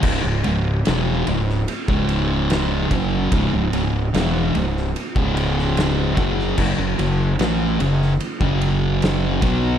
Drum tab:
CC |x---------------|----------------|x---------------|
RD |--x-x-x-x-x-x-x-|x-x-x-x-x-x-x-x-|--x-x-x-x-x-x-x-|
SD |----o--o----o---|----o--o---oo--o|----o--o----o---|
BD |o--------o----o-|o--------o----o-|o--------o----o-|